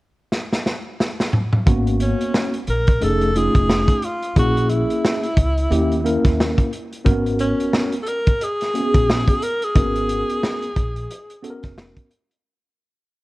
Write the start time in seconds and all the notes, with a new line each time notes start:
0.32 snare
0.52 snare
0.66 snare
1.00 snare
1.20 snare
1.33 mid tom
1.53 mid tom
1.66 G#1 A#3 B3 C#4 F#4, kick, closed hi-hat
1.87 closed hi-hat
2.00 C#4, closed hi-hat
2.21 closed hi-hat
2.34 snare
2.53 closed hi-hat
2.67 A#1 A#4, closed hi-hat
2.87 kick, closed hi-hat
3.01 F1 A3 C#4 D#4 G#4 A4, closed hi-hat
3.21 closed hi-hat
3.36 A3 C#4 D#4 F4 G#4, closed hi-hat
3.55 F1, kick, closed hi-hat
3.69 snare
3.88 kick, closed hi-hat
4.02 F4, closed hi-hat
4.22 closed hi-hat
4.36 A#1 A#3 C#4 E4 F#4 G#4, kick, closed hi-hat
4.57 closed hi-hat
4.69 E4, closed hi-hat
4.90 closed hi-hat
5.05 snare
5.24 closed hi-hat
5.37 C#2, kick, closed hi-hat
5.58 closed hi-hat
5.70 D#2 A#3 C#4 E4 G4, closed hi-hat
5.92 closed hi-hat
6.04 A#3 C#4 E4 A#4, closed hi-hat
6.25 D#2, kick, snare, closed hi-hat
6.40 snare
6.58 kick, closed hi-hat
6.73 closed hi-hat
6.93 closed hi-hat
7.05 G#1 A#3 C#4 F#4 A#4, kick, closed hi-hat
7.11 B3
7.26 closed hi-hat
7.39 C#4, closed hi-hat
7.60 closed hi-hat
7.73 snare
7.92 closed hi-hat
8.03 A4, closed hi-hat
8.08 A#4
8.27 kick, closed hi-hat
8.41 G#4, closed hi-hat
8.61 snare, closed hi-hat
8.74 A#3 C#4 F#4 G#4, closed hi-hat
8.80 B3
8.94 A#1, kick, closed hi-hat
9.10 snare
9.28 kick, closed hi-hat
9.42 A#4, closed hi-hat
9.62 G#4, closed hi-hat
9.76 G#1 A#3 C#4 F#4 A#4, kick, closed hi-hat
9.82 B3
9.96 closed hi-hat
10.09 closed hi-hat
10.30 closed hi-hat
10.44 snare
10.63 closed hi-hat
10.77 A#1, kick, closed hi-hat
10.96 closed hi-hat
11.11 closed hi-hat
11.30 closed hi-hat
11.43 B3 C#4 F#4 A4, closed hi-hat
11.50 A#4
11.63 F1, kick, snare, closed hi-hat
11.78 snare
11.97 kick, closed hi-hat
12.11 closed hi-hat
12.31 closed hi-hat